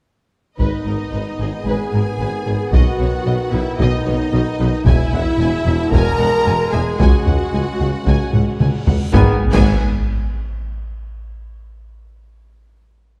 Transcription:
0.58 double bass section G#1, tuba G#1, cello section G#2, trombone section D#3 B3, viola section D#4, french horn section D#4, violin section B4 D#5, taiko
0.85 double bass section G#1, tuba G#1, cello section G#2, violin section A#4
1.12 double bass section G#1, tuba G#1, cello section G#2, violin section B4
1.39 double bass section G#1, tuba G#1, cello section G#2, violin section G#4
1.64 double bass section G#1, tuba G#1, cello section G#2, french horn section G#4, viola section G#4, violin section B4 G#5
1.92 double bass section G#1, tuba G#1, cello section G#2, violin section A#4
2.19 double bass section G#1, tuba G#1, cello section G#2, violin section B4
2.46 double bass section G#1, tuba G#1, cello section G#2, violin section G#4
2.72 double bass section B1, tuba B1, cello section B2, viola section F#4, french horn section F#4, violin section D#5 F#5, taiko
2.99 tuba B1, double bass section B1, cello section B2, violin section C#5
3.25 tuba B1, double bass section B1, cello section B2, violin section D#5
3.52 tuba B1, double bass section B1, cello section B2, viola section E4, french horn section E4, violin section B4 E5
3.78 tuba B1, double bass section B1, cello section B2, viola section D#4, french horn section D#4, violin section D#5, taiko
4.05 tuba B1, double bass section B1, cello section B2, violin section C#5
4.32 tuba B1, double bass section B1, cello section B2, violin section D#5
4.59 tuba B1, double bass section B1, cello section B2, violin section B4
4.86 double bass section E1, tuba E1, cello section E2, trombone section B2 G#3, viola section E4, french horn section E4, violin section E5 G#5, taiko
5.13 double bass section E1, tuba E1, cello section E2, violin section F#5
5.39 tuba E1, double bass section E1, cello section E2, violin section G#5
5.66 double bass section E1, tuba E1, cello section E2, violin section E5
5.92 tuba E1, double bass section E1, cello section E2, viola section A#4, french horn section A#4, violin section G#5 A#5, taiko
6.19 tuba E1, double bass section E1, cello section E2, violin section F#5
6.45 tuba E1, double bass section E1, cello section E2, violin section G#5
6.72 tuba E1, double bass section E1, cello section E2, viola section G#4, french horn section G#4, violin section E5 G#5
6.99 tuba C#2, cello section C#2, double bass section C#2, trombone section C#3, french horn section F#4, viola section F#4, violin section F#5 G#5, taiko, reverse cymbal
7.26 tuba C#2, cello section C#2, double bass section C#2, violin section F#5, taiko low
7.52 tuba C#2, cello section C#2, double bass section C#2, violin section G#5
7.79 tuba C#2, double bass section C#2, cello section C#2, violin section F#5
8.06 tuba C#2, double bass section C#2, cello section C#2, violin section G#5, taiko
8.32 tuba C#2, double bass section C#2, cello section C#2, violin section F#5, taiko low-mid
8.59 tuba C#2, double bass section C#2, cello section C#2, violin section G#5, taiko mid
8.86 tuba C#2, double bass section C#2, cello section C#2, violin section F#5, taiko low
9.13 tuba G#1, double bass section G#1, cello section G#2, trombone section D#3 B3, viola section B3, french horn section G#4, violin section G#5, concert bass drum, snare, taiko, impact
9.53 tuba G#1, double bass section G#1, cello section G#2, viola section B3, violin section G#5, concert bass drum, taiko, crash

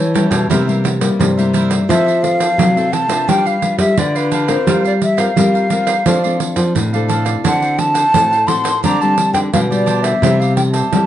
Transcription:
Already playing: nylon-string guitar E3, flute C#5, cavaquinho G5
0.00 cavaquinho A4 C#5
0.14 nylon-string guitar G3 C#4 E4, cavaquinho G4 A4 C#5 G5, pandeiro
0.31 nylon-string guitar B2, cavaquinho A4 C#5 G5, pandeiro
0.50 nylon-string guitar C3 G3 A#3 E4, cavaquinho E4 A#4 C5 E5, pandeiro
0.67 nylon-string guitar G3 A#3 E4, cavaquinho A#4 C5 E5, pandeiro
0.84 muted cavaquinho stroke, pandeiro
1.01 nylon-string guitar G3 A#3 E4, pandeiro
1.19 nylon-string guitar G2 C3, pandeiro
1.37 nylon-string guitar G3 A#3 E4, cavaquinho A#4 C5 E5, pandeiro
1.53 cavaquinho E4 A#4 C5 E5, pandeiro
1.70 cavaquinho A#4 C5 E5, pandeiro
1.89 nylon-string guitar F3 C4 E4 A4, cavaquinho F4 A4 C5 E5, flute E5, pandeiro
2.07 cavaquinho A4 C5 E5, pandeiro
2.22 nylon-string guitar C4 A4, flute F5, muted cavaquinho stroke, pandeiro
2.40 cavaquinho A4 C5, pandeiro
2.58 nylon-string guitar C3 F#3, pandeiro
2.76 nylon-string guitar C4 E4 A4, cavaquinho A4 C5 E5, pandeiro
2.92 cavaquinho F4 A4 C5 E5, flute A5, pandeiro
3.08 nylon-string guitar D4 F4 B4, cavaquinho A4 C5 E5, pandeiro
3.28 nylon-string guitar G3, cavaquinho D4 G4 B4 F5, flute G5, pandeiro
3.46 cavaquinho G4 B4 F5, flute F5, pandeiro
3.62 nylon-string guitar D4 F4 B4, muted cavaquinho stroke, pandeiro
3.78 nylon-string guitar G3, flute E5, pandeiro
3.97 nylon-string guitar D3 D4 F4 B4, flute D5, pandeiro
4.15 cavaquinho G4 B4 F5, flute B4, pandeiro
4.31 cavaquinho D4 G4 B4 F5, pandeiro
4.48 nylon-string guitar C4 F4 A#4, cavaquinho G4 B4 F5, flute C5, pandeiro
4.67 nylon-string guitar G3, cavaquinho F4 A#4 C5 F5, pandeiro
4.84 cavaquinho A#4 C5 F5, flute D5, pandeiro
5.01 flute E5, muted cavaquinho stroke, pandeiro
5.17 nylon-string guitar C4 F4 A#4, cavaquinho A#4 C5 F5, flute F5, pandeiro
5.37 nylon-string guitar G3 C4 F4 A#4, pandeiro
5.54 cavaquinho A#4 C5 F5, pandeiro
5.70 nylon-string guitar C4 F4 A#4, cavaquinho F4 A#4 C5 F5, pandeiro
5.87 cavaquinho A#4 C5 F5, pandeiro
6.06 nylon-string guitar F3 C4 D4 A4, cavaquinho D4 A4 D5 F5, pandeiro
6.23 nylon-string guitar C4 D4 A4, cavaquinho A4 D5 F5, pandeiro
6.40 muted cavaquinho stroke, pandeiro
6.56 nylon-string guitar F3, pandeiro
6.75 nylon-string guitar A2 C3, pandeiro
6.93 nylon-string guitar C4 D4 A4, cavaquinho A4 D5 F5, pandeiro
7.08 cavaquinho D4 A4 D5 F5, pandeiro
7.25 cavaquinho A4 D5 F5, pandeiro
7.44 nylon-string guitar D3 C4 F#4 A4, cavaquinho D4 A4 C5 F#5, flute F#5, pandeiro
7.62 cavaquinho A4 C5 F#5, pandeiro
7.79 flute A5, muted cavaquinho stroke, pandeiro
7.94 cavaquinho A4 C5 F#5, pandeiro
8.14 nylon-string guitar A2 C4 F#4 A4, pandeiro
8.31 cavaquinho A4 C5 F#5, pandeiro
8.47 nylon-string guitar C4 F#4 A4, cavaquinho D4 A4 C5 F#5, flute C6, pandeiro
8.64 cavaquinho A4 C5 F#5, pandeiro
8.83 nylon-string guitar D3 G3 C4 G4, cavaquinho D4 G4 C5 D5, flute A#5, pandeiro
9.01 nylon-string guitar G3 C4 G4, cavaquinho G4 C5 D5, flute A5, pandeiro
9.18 muted cavaquinho stroke, pandeiro
9.33 nylon-string guitar D3, flute G5, pandeiro
9.53 nylon-string guitar B2 D3 G3 C4 G4, flute F5, pandeiro
9.71 nylon-string guitar G3 G4, cavaquinho G4 C5 D5, flute D5, pandeiro
9.86 cavaquinho D4 G4 C5 D5, pandeiro
10.03 cavaquinho G4 C5 D5, flute E5, pandeiro
10.23 nylon-string guitar C3 G3 C4 E4, cavaquinho E4 G4 C5 E5, pandeiro
10.40 cavaquinho G4 C5 E5, flute F5, pandeiro
10.56 flute G5, muted cavaquinho stroke, pandeiro
10.72 cavaquinho C5 E5, flute A5, pandeiro
10.76 cavaquinho G4
10.93 nylon-string guitar G3 C4 E4, pandeiro

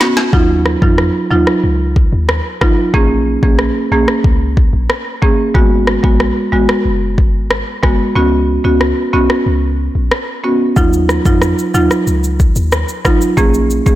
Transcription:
0.00 marimba B3 C#4 F#4, snare
0.17 snare
0.33 808-style bass D#2, marimba F#3 D#4 F4, kick
0.66 cross-stick
0.82 808-style bass F2, marimba F#3 D#4 F4, kick
0.98 cross-stick
1.30 808-style bass D#2, marimba F#3 D#4 F4
1.47 cross-stick
1.64 808-style bass C#2
1.96 kick
2.13 808-style bass D#2
2.29 cross-stick
2.61 808-style bass G#1, marimba F#3 D#4 F4, kick, cross-stick
2.94 808-style bass A#1, marimba A#3 C#4 G#4, kick
3.43 808-style bass A#1, marimba A#3 C#4 G#4, kick
3.59 cross-stick
3.92 808-style bass A#1, marimba A#3 C#4 G#4
4.08 cross-stick
4.24 808-style bass C#2, kick
4.57 kick
4.73 808-style bass A#1
4.90 cross-stick
5.22 marimba A#3 C#4 G#4, kick
5.54 808-style bass G#1, marimba G#3 B3 F#4, kick
5.87 cross-stick
6.03 808-style bass A#1, marimba G#3 B3 F#4, kick
6.20 cross-stick
6.52 808-style bass G#1, marimba G#3 B3 F#4
6.69 cross-stick
6.85 808-style bass F#1
7.18 kick
7.34 808-style bass G#1
7.51 cross-stick
7.83 808-style bass F#1, marimba G#3 B3 F#4, kick, cross-stick
8.15 808-style bass C#2, marimba B3 C#4 F#4
8.64 808-style bass C#2, marimba B3 C#4 F#4
8.81 cross-stick
9.13 808-style bass B1, marimba B3 C#4 F#4
9.30 cross-stick
9.46 808-style bass C#2
9.95 808-style bass A#1
10.11 cross-stick
10.44 marimba B3 C#4 F#4
10.76 808-style bass D#2, marimba F#3 D#4 F4, kick, shaker
10.93 shaker
11.09 cross-stick, shaker
11.26 808-style bass F2, marimba F#3 D#4 F4, kick, shaker
11.42 cross-stick, shaker
11.58 shaker
11.74 808-style bass D#2, marimba F#3 D#4 F4, shaker
11.91 cross-stick, shaker
12.07 808-style bass C#2, shaker
12.24 shaker
12.40 kick, shaker
12.56 808-style bass D#2, shaker
12.72 cross-stick, shaker
12.89 shaker
13.05 808-style bass G#1, marimba F#3 D#4 F4, kick, cross-stick, shaker
13.21 shaker
13.37 808-style bass A#1, marimba A#3 C#4 G#4, kick, shaker
13.54 shaker
13.70 shaker
13.86 808-style bass A#1, marimba A#3 C#4 G#4, kick, shaker

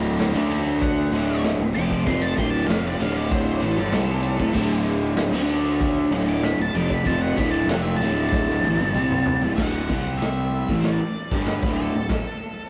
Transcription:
Already playing: fingered electric bass D1, overdriven electric guitar D2 A2 D3, lead electric guitar A4 C5
0.19 lead electric guitar A4 C5, snare, ride, tambourine
0.33 fingered electric bass D2, overdriven electric guitar D3 A3 D4
0.49 lead electric guitar A4 C5, ride, tambourine
0.81 lead electric guitar F#5, kick, ride, tambourine
1.11 fingered electric bass D1, overdriven electric guitar D2 A2 D3, ride, tambourine
1.44 snare, ride, tambourine
1.59 fingered electric bass D1, overdriven electric guitar D2 A2
1.75 fingered electric bass F1, overdriven electric guitar F2 C3 F3, lead electric guitar D6, ride
1.91 kick
2.07 fingered electric bass F1, overdriven electric guitar F2 C3 F3, lead electric guitar C6, kick, ride, tambourine
2.21 lead electric guitar A5
2.37 fingered electric bass D1, overdriven electric guitar D2 A2 D3, lead electric guitar C6, kick, ride, tambourine
2.50 lead electric guitar A5
2.67 fingered electric bass F1, overdriven electric guitar F2 C3 F3, lead electric guitar F5, snare, ride, tambourine
2.87 lead electric guitar D5
2.99 fingered electric bass D1, overdriven electric guitar D2 A2 D3, lead electric guitar F5, ride, tambourine
3.17 lead electric guitar D5
3.31 lead electric guitar C5, kick, ride, tambourine
3.61 fingered electric bass A1, overdriven electric guitar A2 E3, lead electric guitar A4, ride, tambourine
3.78 fingered electric bass G1, overdriven electric guitar G2 D3
3.92 fingered electric bass C2, overdriven electric guitar C3 G3 C4, snare, ride, tambourine
4.23 ride
4.40 fingered electric bass D1, overdriven electric guitar D2 A2, kick
4.53 fingered electric bass D1, overdriven electric guitar D2 A2 D3, kick, crash
4.58 tambourine
4.86 ride, tambourine
5.17 snare, ride, tambourine
5.32 fingered electric bass D2, overdriven electric guitar D3 A3 D4
5.49 ride, tambourine
5.81 kick, ride, tambourine
6.11 fingered electric bass D1, overdriven electric guitar D2 A2 D3, ride, tambourine
6.29 lead electric guitar D6
6.43 lead electric guitar B5, snare, ride, tambourine
6.59 fingered electric bass D1, overdriven electric guitar D2 A2, lead electric guitar A5
6.74 fingered electric bass F1, overdriven electric guitar F2 C3 F3, lead electric guitar D6, ride
6.90 lead electric guitar B5, kick
7.05 fingered electric bass F1, overdriven electric guitar F2 C3 F3, lead electric guitar A5, kick, ride, tambourine
7.22 lead electric guitar F#5
7.37 fingered electric bass D1, overdriven electric guitar D2 A2 D3, lead electric guitar B5, kick, ride, tambourine
7.51 lead electric guitar A5
7.67 fingered electric bass F1, overdriven electric guitar F2, lead electric guitar F#5, snare, ride, tambourine
7.71 overdriven electric guitar C3 F3
7.82 lead electric guitar E5
7.97 fingered electric bass D1, lead electric guitar A5
8.01 overdriven electric guitar D2 A2 D3, ride, tambourine
8.29 lead electric guitar A5, kick, snare, tambourine
8.49 snare
8.61 fingered electric bass A1, overdriven electric guitar A2, high tom, tambourine
8.66 overdriven electric guitar E3
8.78 fingered electric bass G1, overdriven electric guitar G2 D3, high tom
8.94 fingered electric bass C2, overdriven electric guitar C3 G3 C4, mid tom, tambourine
9.11 mid tom
9.26 floor tom
9.42 fingered electric bass D1, overdriven electric guitar D2 A2, floor tom
9.56 fingered electric bass D1, overdriven electric guitar D2 A2 D3, lead electric guitar F#5, kick, snare, crash
9.89 fingered electric bass C2, overdriven electric guitar C3 G3 C4, kick
10.17 lead electric guitar E5
10.22 snare, open hi-hat
10.68 fingered electric bass A1, overdriven electric guitar A2 E3 A3, kick
10.81 lead electric guitar D5, snare, open hi-hat
11.01 muted overdriven electric guitar stroke, muted fingered electric bass stroke
11.31 fingered electric bass G1, overdriven electric guitar G2 D3 G3, kick
11.41 lead electric guitar B4
11.46 snare, open hi-hat
11.63 fingered electric bass D1, overdriven electric guitar D2 A2 D3, kick
11.74 lead electric guitar A4
11.94 fingered electric bass D1, overdriven electric guitar D2 A2
12.09 kick, snare, open hi-hat

